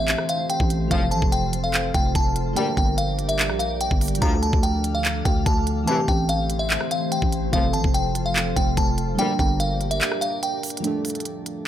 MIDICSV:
0, 0, Header, 1, 7, 480
1, 0, Start_track
1, 0, Key_signature, -1, "minor"
1, 0, Tempo, 413793
1, 1056, Time_signature, 4, 2, 24, 8
1, 13546, End_track
2, 0, Start_track
2, 0, Title_t, "Synth bell"
2, 0, Program_c, 0, 98
2, 0, Note_on_c, 0, 76, 82
2, 309, Note_off_c, 0, 76, 0
2, 342, Note_on_c, 0, 77, 83
2, 530, Note_off_c, 0, 77, 0
2, 578, Note_on_c, 0, 79, 84
2, 1028, Note_off_c, 0, 79, 0
2, 1060, Note_on_c, 0, 77, 100
2, 1249, Note_off_c, 0, 77, 0
2, 1291, Note_on_c, 0, 81, 88
2, 1484, Note_off_c, 0, 81, 0
2, 1534, Note_on_c, 0, 79, 91
2, 1873, Note_off_c, 0, 79, 0
2, 1898, Note_on_c, 0, 77, 76
2, 2235, Note_off_c, 0, 77, 0
2, 2255, Note_on_c, 0, 79, 83
2, 2446, Note_off_c, 0, 79, 0
2, 2501, Note_on_c, 0, 81, 81
2, 2949, Note_off_c, 0, 81, 0
2, 2980, Note_on_c, 0, 79, 96
2, 3169, Note_off_c, 0, 79, 0
2, 3220, Note_on_c, 0, 79, 85
2, 3409, Note_off_c, 0, 79, 0
2, 3453, Note_on_c, 0, 77, 82
2, 3793, Note_off_c, 0, 77, 0
2, 3812, Note_on_c, 0, 76, 81
2, 4152, Note_off_c, 0, 76, 0
2, 4168, Note_on_c, 0, 77, 78
2, 4362, Note_off_c, 0, 77, 0
2, 4419, Note_on_c, 0, 79, 87
2, 4869, Note_off_c, 0, 79, 0
2, 4892, Note_on_c, 0, 82, 102
2, 5084, Note_off_c, 0, 82, 0
2, 5134, Note_on_c, 0, 81, 80
2, 5326, Note_off_c, 0, 81, 0
2, 5371, Note_on_c, 0, 79, 93
2, 5712, Note_off_c, 0, 79, 0
2, 5738, Note_on_c, 0, 77, 79
2, 6075, Note_off_c, 0, 77, 0
2, 6092, Note_on_c, 0, 79, 76
2, 6284, Note_off_c, 0, 79, 0
2, 6334, Note_on_c, 0, 81, 81
2, 6786, Note_off_c, 0, 81, 0
2, 6814, Note_on_c, 0, 81, 94
2, 7006, Note_off_c, 0, 81, 0
2, 7057, Note_on_c, 0, 79, 88
2, 7248, Note_off_c, 0, 79, 0
2, 7298, Note_on_c, 0, 77, 88
2, 7635, Note_off_c, 0, 77, 0
2, 7648, Note_on_c, 0, 76, 82
2, 7990, Note_off_c, 0, 76, 0
2, 8021, Note_on_c, 0, 77, 82
2, 8210, Note_off_c, 0, 77, 0
2, 8258, Note_on_c, 0, 79, 83
2, 8708, Note_off_c, 0, 79, 0
2, 8740, Note_on_c, 0, 77, 99
2, 8929, Note_off_c, 0, 77, 0
2, 8970, Note_on_c, 0, 81, 91
2, 9163, Note_off_c, 0, 81, 0
2, 9214, Note_on_c, 0, 79, 91
2, 9553, Note_off_c, 0, 79, 0
2, 9577, Note_on_c, 0, 77, 74
2, 9915, Note_off_c, 0, 77, 0
2, 9934, Note_on_c, 0, 79, 83
2, 10126, Note_off_c, 0, 79, 0
2, 10181, Note_on_c, 0, 81, 83
2, 10629, Note_off_c, 0, 81, 0
2, 10659, Note_on_c, 0, 79, 96
2, 10848, Note_off_c, 0, 79, 0
2, 10901, Note_on_c, 0, 79, 85
2, 11090, Note_off_c, 0, 79, 0
2, 11135, Note_on_c, 0, 77, 83
2, 11474, Note_off_c, 0, 77, 0
2, 11494, Note_on_c, 0, 76, 81
2, 11833, Note_off_c, 0, 76, 0
2, 11847, Note_on_c, 0, 77, 82
2, 12041, Note_off_c, 0, 77, 0
2, 12100, Note_on_c, 0, 79, 87
2, 12549, Note_off_c, 0, 79, 0
2, 13546, End_track
3, 0, Start_track
3, 0, Title_t, "Ambient pad"
3, 0, Program_c, 1, 92
3, 0, Note_on_c, 1, 52, 77
3, 0, Note_on_c, 1, 57, 84
3, 0, Note_on_c, 1, 67, 79
3, 0, Note_on_c, 1, 72, 92
3, 1036, Note_off_c, 1, 52, 0
3, 1036, Note_off_c, 1, 57, 0
3, 1036, Note_off_c, 1, 67, 0
3, 1056, Note_on_c, 1, 53, 85
3, 1056, Note_on_c, 1, 65, 76
3, 1057, Note_on_c, 1, 69, 79
3, 2937, Note_off_c, 1, 72, 0
3, 2956, Note_off_c, 1, 65, 0
3, 2957, Note_off_c, 1, 53, 0
3, 2957, Note_off_c, 1, 69, 0
3, 2975, Note_on_c, 1, 67, 77
3, 2976, Note_on_c, 1, 55, 84
3, 2976, Note_on_c, 1, 70, 78
3, 2976, Note_on_c, 1, 74, 93
3, 4876, Note_off_c, 1, 55, 0
3, 4876, Note_off_c, 1, 67, 0
3, 4876, Note_off_c, 1, 70, 0
3, 4876, Note_off_c, 1, 74, 0
3, 4896, Note_on_c, 1, 50, 84
3, 4896, Note_on_c, 1, 69, 77
3, 4896, Note_on_c, 1, 77, 92
3, 4897, Note_on_c, 1, 62, 78
3, 6797, Note_off_c, 1, 50, 0
3, 6797, Note_off_c, 1, 62, 0
3, 6797, Note_off_c, 1, 69, 0
3, 6797, Note_off_c, 1, 77, 0
3, 6816, Note_on_c, 1, 52, 77
3, 6817, Note_on_c, 1, 57, 83
3, 6817, Note_on_c, 1, 67, 76
3, 6817, Note_on_c, 1, 72, 91
3, 8716, Note_off_c, 1, 52, 0
3, 8717, Note_off_c, 1, 57, 0
3, 8717, Note_off_c, 1, 67, 0
3, 8735, Note_on_c, 1, 53, 87
3, 8735, Note_on_c, 1, 65, 78
3, 8735, Note_on_c, 1, 69, 78
3, 10618, Note_off_c, 1, 72, 0
3, 10636, Note_off_c, 1, 53, 0
3, 10636, Note_off_c, 1, 65, 0
3, 10636, Note_off_c, 1, 69, 0
3, 10656, Note_on_c, 1, 67, 80
3, 10657, Note_on_c, 1, 55, 85
3, 10657, Note_on_c, 1, 70, 76
3, 10657, Note_on_c, 1, 74, 90
3, 12557, Note_off_c, 1, 55, 0
3, 12557, Note_off_c, 1, 67, 0
3, 12557, Note_off_c, 1, 70, 0
3, 12557, Note_off_c, 1, 74, 0
3, 13546, End_track
4, 0, Start_track
4, 0, Title_t, "Synth keys"
4, 0, Program_c, 2, 88
4, 0, Control_c, 2, 64, 127
4, 0, Note_on_c, 2, 52, 73
4, 0, Note_on_c, 2, 57, 63
4, 0, Note_on_c, 2, 60, 63
4, 0, Note_on_c, 2, 67, 79
4, 995, Note_off_c, 2, 52, 0
4, 1009, Note_off_c, 2, 57, 0
4, 1020, Note_on_c, 2, 53, 67
4, 1022, Note_off_c, 2, 60, 0
4, 1036, Note_off_c, 2, 67, 0
4, 1046, Note_on_c, 2, 57, 69
4, 1072, Control_c, 2, 64, 0
4, 1073, Note_on_c, 2, 60, 65
4, 1100, Note_on_c, 2, 69, 81
4, 1266, Control_c, 2, 64, 127
4, 2919, Note_off_c, 2, 53, 0
4, 2932, Note_off_c, 2, 57, 0
4, 2936, Note_on_c, 2, 55, 73
4, 2946, Note_off_c, 2, 60, 0
4, 2960, Note_off_c, 2, 69, 0
4, 2963, Note_on_c, 2, 58, 65
4, 2990, Control_c, 2, 64, 0
4, 2990, Note_on_c, 2, 62, 69
4, 3016, Note_on_c, 2, 70, 81
4, 3182, Control_c, 2, 64, 127
4, 4837, Note_off_c, 2, 55, 0
4, 4850, Note_off_c, 2, 58, 0
4, 4850, Note_on_c, 2, 53, 68
4, 4864, Note_off_c, 2, 62, 0
4, 4877, Note_on_c, 2, 57, 68
4, 4878, Note_off_c, 2, 70, 0
4, 4904, Note_on_c, 2, 62, 62
4, 4912, Control_c, 2, 64, 0
4, 4931, Note_on_c, 2, 69, 76
4, 5082, Control_c, 2, 64, 127
4, 6754, Note_off_c, 2, 53, 0
4, 6768, Note_off_c, 2, 57, 0
4, 6772, Note_on_c, 2, 52, 76
4, 6781, Note_off_c, 2, 62, 0
4, 6795, Note_off_c, 2, 69, 0
4, 6799, Note_on_c, 2, 57, 62
4, 6826, Note_on_c, 2, 60, 64
4, 6829, Control_c, 2, 64, 0
4, 6853, Note_on_c, 2, 67, 79
4, 7013, Control_c, 2, 64, 127
4, 8675, Note_off_c, 2, 52, 0
4, 8689, Note_off_c, 2, 57, 0
4, 8700, Note_on_c, 2, 53, 69
4, 8702, Note_off_c, 2, 60, 0
4, 8716, Note_off_c, 2, 67, 0
4, 8726, Note_on_c, 2, 57, 67
4, 8750, Control_c, 2, 64, 0
4, 8753, Note_on_c, 2, 60, 67
4, 8780, Note_on_c, 2, 69, 81
4, 8955, Control_c, 2, 64, 127
4, 10599, Note_off_c, 2, 53, 0
4, 10612, Note_off_c, 2, 57, 0
4, 10615, Note_on_c, 2, 55, 70
4, 10626, Note_off_c, 2, 60, 0
4, 10640, Note_off_c, 2, 69, 0
4, 10642, Note_on_c, 2, 58, 62
4, 10669, Note_on_c, 2, 62, 71
4, 10671, Control_c, 2, 64, 0
4, 10695, Note_on_c, 2, 70, 82
4, 10877, Control_c, 2, 64, 127
4, 12517, Note_off_c, 2, 55, 0
4, 12530, Note_off_c, 2, 58, 0
4, 12530, Note_on_c, 2, 53, 65
4, 12544, Note_off_c, 2, 62, 0
4, 12557, Note_off_c, 2, 70, 0
4, 12557, Note_on_c, 2, 57, 67
4, 12583, Note_on_c, 2, 62, 62
4, 12592, Control_c, 2, 64, 0
4, 12610, Note_on_c, 2, 69, 76
4, 12807, Control_c, 2, 64, 127
4, 13546, Note_off_c, 2, 53, 0
4, 13546, Note_off_c, 2, 57, 0
4, 13546, Note_off_c, 2, 62, 0
4, 13546, Note_off_c, 2, 69, 0
4, 13546, End_track
5, 0, Start_track
5, 0, Title_t, "Brass ensemble"
5, 0, Program_c, 3, 61
5, 1055, Note_on_c, 3, 36, 101
5, 1055, Note_on_c, 3, 45, 98
5, 1055, Note_on_c, 3, 53, 113
5, 1208, Note_off_c, 3, 36, 0
5, 1208, Note_off_c, 3, 45, 0
5, 1208, Note_off_c, 3, 53, 0
5, 2976, Note_on_c, 3, 38, 107
5, 2976, Note_on_c, 3, 46, 96
5, 2976, Note_on_c, 3, 55, 109
5, 3129, Note_off_c, 3, 38, 0
5, 3129, Note_off_c, 3, 46, 0
5, 3129, Note_off_c, 3, 55, 0
5, 4895, Note_on_c, 3, 53, 112
5, 4896, Note_on_c, 3, 38, 91
5, 4896, Note_on_c, 3, 45, 100
5, 5048, Note_off_c, 3, 53, 0
5, 5049, Note_off_c, 3, 38, 0
5, 5049, Note_off_c, 3, 45, 0
5, 6815, Note_on_c, 3, 36, 104
5, 6815, Note_on_c, 3, 52, 111
5, 6816, Note_on_c, 3, 45, 97
5, 6968, Note_off_c, 3, 36, 0
5, 6968, Note_off_c, 3, 52, 0
5, 6969, Note_off_c, 3, 45, 0
5, 8735, Note_on_c, 3, 36, 98
5, 8735, Note_on_c, 3, 45, 102
5, 8735, Note_on_c, 3, 53, 109
5, 8888, Note_off_c, 3, 36, 0
5, 8888, Note_off_c, 3, 45, 0
5, 8888, Note_off_c, 3, 53, 0
5, 10655, Note_on_c, 3, 38, 108
5, 10655, Note_on_c, 3, 46, 97
5, 10655, Note_on_c, 3, 55, 112
5, 10808, Note_off_c, 3, 38, 0
5, 10808, Note_off_c, 3, 46, 0
5, 10808, Note_off_c, 3, 55, 0
5, 13546, End_track
6, 0, Start_track
6, 0, Title_t, "808-style bass"
6, 0, Program_c, 4, 38
6, 0, Note_on_c, 4, 33, 109
6, 181, Note_off_c, 4, 33, 0
6, 696, Note_on_c, 4, 33, 106
6, 1042, Note_off_c, 4, 33, 0
6, 1055, Note_on_c, 4, 29, 110
6, 1296, Note_on_c, 4, 33, 108
6, 1314, Note_off_c, 4, 29, 0
6, 1410, Note_off_c, 4, 33, 0
6, 1417, Note_on_c, 4, 29, 99
6, 2223, Note_off_c, 4, 29, 0
6, 2256, Note_on_c, 4, 29, 105
6, 2486, Note_off_c, 4, 29, 0
6, 2496, Note_on_c, 4, 29, 107
6, 2956, Note_off_c, 4, 29, 0
6, 3215, Note_on_c, 4, 31, 110
6, 4056, Note_on_c, 4, 34, 98
6, 4073, Note_off_c, 4, 31, 0
6, 4512, Note_off_c, 4, 34, 0
6, 4536, Note_on_c, 4, 31, 104
6, 4882, Note_off_c, 4, 31, 0
6, 4895, Note_on_c, 4, 38, 118
6, 5241, Note_off_c, 4, 38, 0
6, 5256, Note_on_c, 4, 38, 100
6, 6062, Note_off_c, 4, 38, 0
6, 6095, Note_on_c, 4, 38, 104
6, 6326, Note_off_c, 4, 38, 0
6, 6336, Note_on_c, 4, 38, 105
6, 6796, Note_off_c, 4, 38, 0
6, 7055, Note_on_c, 4, 33, 112
6, 7862, Note_off_c, 4, 33, 0
6, 8377, Note_on_c, 4, 33, 105
6, 8722, Note_off_c, 4, 33, 0
6, 8736, Note_on_c, 4, 29, 108
6, 8975, Note_on_c, 4, 33, 106
6, 8993, Note_off_c, 4, 29, 0
6, 9089, Note_off_c, 4, 33, 0
6, 9096, Note_on_c, 4, 29, 105
6, 9902, Note_off_c, 4, 29, 0
6, 9936, Note_on_c, 4, 29, 106
6, 10166, Note_off_c, 4, 29, 0
6, 10176, Note_on_c, 4, 29, 106
6, 10636, Note_off_c, 4, 29, 0
6, 10895, Note_on_c, 4, 31, 111
6, 11615, Note_off_c, 4, 31, 0
6, 13546, End_track
7, 0, Start_track
7, 0, Title_t, "Drums"
7, 94, Note_on_c, 9, 42, 77
7, 95, Note_on_c, 9, 39, 122
7, 210, Note_off_c, 9, 42, 0
7, 211, Note_off_c, 9, 39, 0
7, 214, Note_on_c, 9, 37, 86
7, 330, Note_off_c, 9, 37, 0
7, 335, Note_on_c, 9, 42, 84
7, 451, Note_off_c, 9, 42, 0
7, 575, Note_on_c, 9, 42, 77
7, 691, Note_off_c, 9, 42, 0
7, 696, Note_on_c, 9, 36, 94
7, 812, Note_off_c, 9, 36, 0
7, 815, Note_on_c, 9, 42, 77
7, 931, Note_off_c, 9, 42, 0
7, 1055, Note_on_c, 9, 42, 81
7, 1056, Note_on_c, 9, 36, 118
7, 1171, Note_off_c, 9, 42, 0
7, 1172, Note_off_c, 9, 36, 0
7, 1295, Note_on_c, 9, 42, 60
7, 1411, Note_off_c, 9, 42, 0
7, 1417, Note_on_c, 9, 36, 95
7, 1533, Note_off_c, 9, 36, 0
7, 1535, Note_on_c, 9, 42, 80
7, 1651, Note_off_c, 9, 42, 0
7, 1776, Note_on_c, 9, 42, 83
7, 1892, Note_off_c, 9, 42, 0
7, 2016, Note_on_c, 9, 39, 119
7, 2016, Note_on_c, 9, 42, 78
7, 2132, Note_off_c, 9, 39, 0
7, 2132, Note_off_c, 9, 42, 0
7, 2255, Note_on_c, 9, 36, 93
7, 2256, Note_on_c, 9, 42, 76
7, 2371, Note_off_c, 9, 36, 0
7, 2372, Note_off_c, 9, 42, 0
7, 2496, Note_on_c, 9, 36, 92
7, 2496, Note_on_c, 9, 42, 77
7, 2612, Note_off_c, 9, 36, 0
7, 2612, Note_off_c, 9, 42, 0
7, 2735, Note_on_c, 9, 42, 80
7, 2851, Note_off_c, 9, 42, 0
7, 2975, Note_on_c, 9, 42, 81
7, 3091, Note_off_c, 9, 42, 0
7, 3215, Note_on_c, 9, 36, 89
7, 3331, Note_off_c, 9, 36, 0
7, 3456, Note_on_c, 9, 42, 79
7, 3572, Note_off_c, 9, 42, 0
7, 3696, Note_on_c, 9, 42, 49
7, 3812, Note_off_c, 9, 42, 0
7, 3816, Note_on_c, 9, 42, 75
7, 3932, Note_off_c, 9, 42, 0
7, 3935, Note_on_c, 9, 39, 126
7, 3935, Note_on_c, 9, 42, 76
7, 4051, Note_off_c, 9, 39, 0
7, 4051, Note_off_c, 9, 42, 0
7, 4054, Note_on_c, 9, 37, 86
7, 4170, Note_off_c, 9, 37, 0
7, 4176, Note_on_c, 9, 42, 81
7, 4292, Note_off_c, 9, 42, 0
7, 4415, Note_on_c, 9, 42, 77
7, 4531, Note_off_c, 9, 42, 0
7, 4536, Note_on_c, 9, 36, 94
7, 4652, Note_off_c, 9, 36, 0
7, 4655, Note_on_c, 9, 42, 47
7, 4655, Note_on_c, 9, 46, 85
7, 4735, Note_off_c, 9, 42, 0
7, 4735, Note_on_c, 9, 42, 62
7, 4771, Note_off_c, 9, 46, 0
7, 4814, Note_off_c, 9, 42, 0
7, 4814, Note_on_c, 9, 42, 78
7, 4894, Note_off_c, 9, 42, 0
7, 4894, Note_on_c, 9, 42, 78
7, 4895, Note_on_c, 9, 36, 121
7, 5010, Note_off_c, 9, 42, 0
7, 5011, Note_off_c, 9, 36, 0
7, 5135, Note_on_c, 9, 42, 60
7, 5251, Note_off_c, 9, 42, 0
7, 5256, Note_on_c, 9, 36, 95
7, 5372, Note_off_c, 9, 36, 0
7, 5375, Note_on_c, 9, 42, 80
7, 5491, Note_off_c, 9, 42, 0
7, 5616, Note_on_c, 9, 42, 84
7, 5732, Note_off_c, 9, 42, 0
7, 5855, Note_on_c, 9, 39, 123
7, 5855, Note_on_c, 9, 42, 77
7, 5971, Note_off_c, 9, 39, 0
7, 5971, Note_off_c, 9, 42, 0
7, 6095, Note_on_c, 9, 36, 93
7, 6095, Note_on_c, 9, 42, 77
7, 6211, Note_off_c, 9, 36, 0
7, 6211, Note_off_c, 9, 42, 0
7, 6336, Note_on_c, 9, 36, 92
7, 6336, Note_on_c, 9, 42, 74
7, 6452, Note_off_c, 9, 36, 0
7, 6452, Note_off_c, 9, 42, 0
7, 6575, Note_on_c, 9, 42, 76
7, 6691, Note_off_c, 9, 42, 0
7, 6815, Note_on_c, 9, 42, 81
7, 6931, Note_off_c, 9, 42, 0
7, 7055, Note_on_c, 9, 36, 88
7, 7171, Note_off_c, 9, 36, 0
7, 7296, Note_on_c, 9, 42, 78
7, 7412, Note_off_c, 9, 42, 0
7, 7536, Note_on_c, 9, 42, 75
7, 7652, Note_off_c, 9, 42, 0
7, 7776, Note_on_c, 9, 39, 125
7, 7776, Note_on_c, 9, 42, 76
7, 7892, Note_off_c, 9, 39, 0
7, 7892, Note_off_c, 9, 42, 0
7, 7895, Note_on_c, 9, 37, 84
7, 8011, Note_off_c, 9, 37, 0
7, 8016, Note_on_c, 9, 42, 80
7, 8132, Note_off_c, 9, 42, 0
7, 8256, Note_on_c, 9, 42, 76
7, 8372, Note_off_c, 9, 42, 0
7, 8377, Note_on_c, 9, 36, 94
7, 8493, Note_off_c, 9, 36, 0
7, 8496, Note_on_c, 9, 42, 79
7, 8612, Note_off_c, 9, 42, 0
7, 8735, Note_on_c, 9, 42, 77
7, 8736, Note_on_c, 9, 36, 119
7, 8851, Note_off_c, 9, 42, 0
7, 8852, Note_off_c, 9, 36, 0
7, 8975, Note_on_c, 9, 42, 59
7, 9091, Note_off_c, 9, 42, 0
7, 9096, Note_on_c, 9, 36, 97
7, 9212, Note_off_c, 9, 36, 0
7, 9216, Note_on_c, 9, 42, 82
7, 9332, Note_off_c, 9, 42, 0
7, 9456, Note_on_c, 9, 42, 84
7, 9572, Note_off_c, 9, 42, 0
7, 9696, Note_on_c, 9, 39, 126
7, 9696, Note_on_c, 9, 42, 77
7, 9812, Note_off_c, 9, 39, 0
7, 9812, Note_off_c, 9, 42, 0
7, 9935, Note_on_c, 9, 36, 95
7, 9936, Note_on_c, 9, 42, 75
7, 10051, Note_off_c, 9, 36, 0
7, 10052, Note_off_c, 9, 42, 0
7, 10176, Note_on_c, 9, 36, 93
7, 10176, Note_on_c, 9, 42, 78
7, 10292, Note_off_c, 9, 36, 0
7, 10292, Note_off_c, 9, 42, 0
7, 10416, Note_on_c, 9, 42, 77
7, 10532, Note_off_c, 9, 42, 0
7, 10656, Note_on_c, 9, 42, 81
7, 10772, Note_off_c, 9, 42, 0
7, 10895, Note_on_c, 9, 36, 88
7, 11011, Note_off_c, 9, 36, 0
7, 11136, Note_on_c, 9, 42, 79
7, 11252, Note_off_c, 9, 42, 0
7, 11375, Note_on_c, 9, 42, 48
7, 11491, Note_off_c, 9, 42, 0
7, 11496, Note_on_c, 9, 42, 74
7, 11612, Note_off_c, 9, 42, 0
7, 11615, Note_on_c, 9, 42, 76
7, 11616, Note_on_c, 9, 39, 124
7, 11731, Note_off_c, 9, 42, 0
7, 11732, Note_off_c, 9, 39, 0
7, 11735, Note_on_c, 9, 37, 86
7, 11851, Note_off_c, 9, 37, 0
7, 11856, Note_on_c, 9, 42, 84
7, 11972, Note_off_c, 9, 42, 0
7, 12096, Note_on_c, 9, 42, 74
7, 12212, Note_off_c, 9, 42, 0
7, 12336, Note_on_c, 9, 42, 46
7, 12336, Note_on_c, 9, 46, 82
7, 12416, Note_off_c, 9, 42, 0
7, 12416, Note_on_c, 9, 42, 65
7, 12452, Note_off_c, 9, 46, 0
7, 12496, Note_off_c, 9, 42, 0
7, 12496, Note_on_c, 9, 42, 83
7, 12576, Note_off_c, 9, 42, 0
7, 12576, Note_on_c, 9, 42, 78
7, 12692, Note_off_c, 9, 42, 0
7, 12816, Note_on_c, 9, 42, 49
7, 12816, Note_on_c, 9, 46, 62
7, 12875, Note_off_c, 9, 42, 0
7, 12875, Note_on_c, 9, 42, 48
7, 12932, Note_off_c, 9, 46, 0
7, 12936, Note_off_c, 9, 42, 0
7, 12936, Note_on_c, 9, 42, 50
7, 12995, Note_off_c, 9, 42, 0
7, 12995, Note_on_c, 9, 42, 50
7, 13055, Note_off_c, 9, 42, 0
7, 13055, Note_on_c, 9, 42, 77
7, 13171, Note_off_c, 9, 42, 0
7, 13295, Note_on_c, 9, 42, 82
7, 13411, Note_off_c, 9, 42, 0
7, 13546, End_track
0, 0, End_of_file